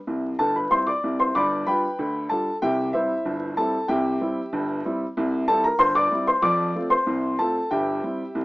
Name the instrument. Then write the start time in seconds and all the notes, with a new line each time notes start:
upright piano
0.07 C2 C3
0.39 G1 G2 A4 A5
0.56 B4 B5
0.71 G3 C4 E4 C5 C6
0.87 D5 D6
1.04 C2 C3
1.20 C5 C6
1.35 G1 G2 D5 B5 D6
1.67 G3 D4 F4 B4 G5 B5
1.99 D2 D3
2.29 G3 D4 F4 A4 A5
2.62 C2 C3 G4 E5 G5
2.93 G3 C4 E4 C5 E5
3.25 G1 G2
3.57 G3 C4 E4 A4 A5
3.88 C2 C3 G4 E5 G5
4.21 G3 C4 E4
4.53 G1 G2
4.85 G3 C4 E4
5.17 C2 C3
5.48 G3 C4 E4 A4 A5
5.64 A#4 A#5
5.79 G1 G2 C5 C6
5.95 D5 D6
6.11 G3 C4 E4
6.27 C5 C6
6.42 F2 F3 D5 D6
6.75 A3 C4 F4
6.90 C5 C6
7.07 C2 C3
7.39 A3 C4 F4 A4 A5
7.71 G1 G2 G4 E5 G5
8.03 G3 C4 E4
8.35 C2 C3